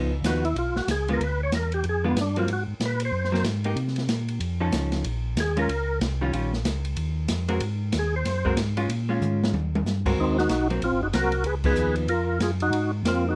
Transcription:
Already playing: C#2 F3 B3 D#4
0.22 D#2 F3 F#4, snare, hi-hat pedal, ride
0.26 B3 D#4
0.45 E4, ride
0.56 B1 F4, ride
0.75 B1 F#4, snare
0.87 C#2 G#4, snare, hi-hat pedal, ride
1.08 D3 G#3 B3 F4, ride
1.13 A#4
1.19 D2, ride
1.24 B4
1.43 C#5
1.52 E2 A#4, snare, hi-hat pedal, ride
1.72 G4, ride
1.84 F2, ride
1.89 G#4
2.04 D3 G#3 B3 F4
2.09 B3
2.15 G2, snare, hi-hat pedal, ride
2.21 D4
2.36 F#3 A#3 C4 F4, ride
2.47 G#2, ride
2.53 F#4
2.67 G#2
2.80 A#2, snare, hi-hat pedal, ride
2.85 B4
3.00 ride
3.05 C5
3.12 F#2
3.24 snare
3.32 F#3 A#3 C4, snare
3.44 G#2, snare, hi-hat pedal, ride
3.64 A#3 D#4 G4, ride
3.76 C3, ride
3.88 snare
3.96 snare, ride
4.08 A#2, snare, hi-hat pedal, ride
4.28 ride
4.40 F2, ride
4.60 F3 C#4 D#4 A4
4.71 C#2, snare, hi-hat pedal, ride
4.92 snare, ride
5.04 A#1, ride
5.35 D#2, snare, hi-hat pedal, ride
5.40 G#4
5.57 G#3 C#4 F4 A#4, ride
5.68 C#2, ride
6.00 C2, snare, hi-hat pedal, ride
6.21 D#3 G3 C#4 F4
6.32 A#1 D#3 G3 C#4 F4, ride
6.53 snare
6.64 C#2, snare, hi-hat pedal, ride
6.85 ride
6.96 D#2, ride
7.28 F2, snare, hi-hat pedal, ride
7.48 G#3 C4 F#4 A#4, ride
7.60 G#2, ride
7.92 D#2, snare, hi-hat pedal, ride
7.99 G#4
8.16 C5
8.25 F#2, snare, ride
8.45 G#3 C4 F#4 A#4, kick
8.56 G#2, snare, hi-hat pedal, ride
8.77 G#3 C#4 F4, ride
8.88 A#2, ride
9.09 G#3 C#4 F4
9.21 G#2, hi-hat pedal, mid tom
9.44 snare
9.52 D#2, high tom
9.75 high tom
9.84 G2, snare, hi-hat pedal
10.06 G#3 C4 F#4 A#4, kick, crash
10.17 D#2 D#4
10.21 C4
10.38 D#4 F#4, snare
10.49 B1, snare, hi-hat pedal, ride
10.70 F#3 A#3 C4, ride
10.81 A#1 C4 F4, ride
10.91 G#1
11.03 F#1 D#4 F#4
11.13 C2 F#3 A#3 C4 F#4 A#4, snare, hi-hat pedal, ride
11.32 ride
11.43 C#2 G#4 B4, ride
11.64 F3 B3 D#4 G#4 B4, kick, crash
11.76 D#2, hi-hat pedal
11.96 ride
12.07 F2 F4 A#4, ride
12.39 F#2 F4 G#4, snare, hi-hat pedal, ride
12.60 D#4 F#4, ride
12.70 G#2, ride
13.03 F2 A#3 C4, snare, hi-hat pedal, ride
13.08 C4 F4
13.29 D#4 F#4

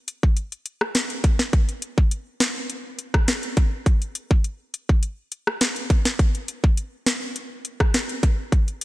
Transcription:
0.08 closed hi-hat
0.23 kick
0.37 closed hi-hat
0.52 closed hi-hat
0.66 closed hi-hat
0.81 cross-stick
0.95 snare, closed hi-hat
1.10 closed hi-hat
1.24 kick, closed hi-hat
1.39 snare
1.53 kick, closed hi-hat
1.69 closed hi-hat
1.82 closed hi-hat
1.98 kick
2.11 closed hi-hat
2.40 snare, closed hi-hat
2.70 closed hi-hat
2.99 closed hi-hat
3.14 kick, cross-stick
3.28 snare, closed hi-hat
3.43 closed hi-hat
3.57 kick, closed hi-hat
3.86 kick, closed hi-hat
4.02 closed hi-hat
4.15 closed hi-hat
4.31 kick
4.44 closed hi-hat
4.74 closed hi-hat
4.89 kick
5.03 closed hi-hat
5.32 closed hi-hat
5.47 cross-stick
5.61 snare, closed hi-hat
5.76 closed hi-hat
5.90 kick, closed hi-hat
6.05 snare
6.19 kick, closed hi-hat
6.35 closed hi-hat
6.48 closed hi-hat
6.64 kick
6.77 closed hi-hat
7.06 snare, closed hi-hat
7.36 closed hi-hat
7.65 closed hi-hat
7.80 kick, cross-stick
7.94 snare, closed hi-hat
8.09 closed hi-hat
8.23 kick, closed hi-hat
8.52 kick, closed hi-hat
8.68 closed hi-hat
8.81 closed hi-hat

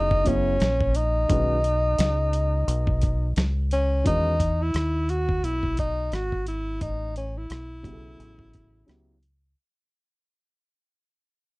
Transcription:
Already playing: F#1 C#3 F#3 B3 D#4 E4 G#4
0.11 kick
0.24 C#3 F#3 B3 C#4 E4 F#4, kick, closed hi-hat
0.60 A#1, snare, closed hi-hat
0.81 kick
0.95 D#4, closed hi-hat
1.28 B1 D#3 G#3 C#4 F#4 B4, kick, closed hi-hat
1.64 closed hi-hat
1.98 C#2, snare, closed hi-hat
2.33 closed hi-hat
2.68 B1, closed hi-hat
2.87 kick
3.02 kick, closed hi-hat
3.36 C#2, snare, closed hi-hat
3.71 C#4, closed hi-hat
4.04 E2 D#3 G#3 C#4 D#4 F#4 B4, kick, closed hi-hat
4.40 kick, closed hi-hat
4.62 E4
4.74 D#2, cross-stick, closed hi-hat
5.09 F#4, closed hi-hat
5.29 kick
5.43 B1 E4, closed hi-hat
5.63 kick
5.77 D#4, kick, closed hi-hat
6.12 G#1 F#4, cross-stick, closed hi-hat
6.32 kick
6.47 E4, closed hi-hat
6.81 A1 D#4, kick, closed hi-hat
7.16 C#4, closed hi-hat
7.37 E4
7.50 B1, cross-stick, closed hi-hat
7.83 C#3 F#3 B3 E4 G4, kick, closed hi-hat
7.93 A4
8.19 A1, closed hi-hat
8.39 kick
8.54 kick, closed hi-hat
8.86 C#2 C#3 F#3 B3 E4 G4, cross-stick, closed hi-hat
9.23 closed hi-hat

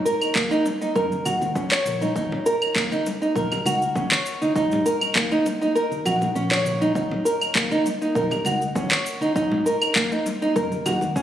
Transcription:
0.05 A#4, cabasa
0.22 cabasa, claves
0.35 A#3, kick, clap, cabasa
0.51 D#4, cabasa
0.66 high bongo, cabasa
0.81 D#4, high bongo, cabasa
0.96 F#2 A#4, kick, cabasa
1.12 high conga, cabasa
1.25 D#2 F#4, low conga, cabasa, claves
1.42 high bongo, high conga, cabasa
1.55 C#4, kick, cabasa
1.72 C#5, clap, cabasa
1.85 A#1, high conga, cabasa
2.01 D#4, high bongo, cabasa
2.16 D#2 D#4, kick, cabasa
2.32 low conga
2.46 A#4, cabasa
2.62 cabasa, claves
2.75 A#3, kick, clap, cabasa
2.92 D#4, high conga, cabasa
3.06 high bongo, cabasa
3.22 D#4, cabasa
3.36 A#1 A#4, kick, cabasa
3.52 high conga, low conga, cabasa, claves
3.66 C#2 F#4, high bongo, cabasa, claves
3.82 cabasa
3.96 D#2 C#4, kick, high conga, cabasa
4.12 C#5, clap, cabasa
4.26 cabasa
4.41 D#4, high conga, cabasa
4.56 D#4, kick, cabasa
4.71 G#2, low conga, cabasa
4.86 A#4, cabasa
5.01 high bongo, cabasa, claves
5.15 A#3, kick, clap, cabasa
5.32 D#4, high conga, cabasa
5.46 high bongo, cabasa
5.61 D#4, high bongo, cabasa
5.75 A#4, cabasa
5.92 high conga, cabasa
6.05 A#1 F#4, low conga, cabasa, claves
6.22 high bongo, high conga, cabasa
6.35 A#1 C#4, cabasa
6.51 C#5, clap, high conga, cabasa
6.66 high conga, cabasa
6.81 D#4, high bongo, cabasa
6.95 D#2 D#4, kick, cabasa
7.11 low conga
7.25 A#4, cabasa
7.42 cabasa, claves
7.55 A#3, kick, clap, cabasa
7.71 D#4, high conga, cabasa
7.86 high bongo, cabasa
8.02 D#4, cabasa
8.15 A#1 A#4, kick, cabasa
8.31 high conga, low conga, cabasa, claves
8.45 C#2 F#4, high bongo, cabasa, claves
8.62 cabasa
8.75 D#2 C#4, kick, high conga, cabasa
8.91 C#5, clap, cabasa
9.06 cabasa
9.21 D#4, high conga, cabasa
9.36 D#4, kick, cabasa
9.52 G#2, low conga
9.66 A#4, cabasa
9.82 cabasa, claves
9.96 A#3, kick, clap, cabasa
10.12 D#4, cabasa
10.26 high bongo, cabasa
10.42 D#4, high bongo, cabasa
10.56 F#2 A#4, kick, cabasa
10.72 high conga, cabasa
10.86 D#2 F#4, low conga, cabasa, claves
11.01 high bongo, high conga, cabasa
11.16 C#4, kick, cabasa

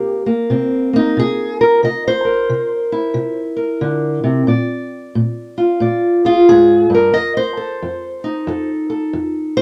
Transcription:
Already playing: C3 A#3 G4
0.26 A#3
0.50 C3 C4
0.93 A#3 D#4
1.17 C3 G#4
1.61 A#4
1.83 C3 D#5
2.08 C5
2.25 A#4
2.49 C3
2.92 E4
3.14 C3
3.56 A#4
3.81 D3
4.24 C3
4.47 A#2 D5
5.15 A#2
5.58 F4
5.80 A#2 D5
6.25 F4 G#4
6.49 G#2 G#4
6.90 G2
6.94 A#4
7.14 F2 D#5
7.37 C5
7.57 A4
7.82 F2
8.24 D#4
8.47 F2 A4
8.90 A4
9.13 F2
9.57 C5

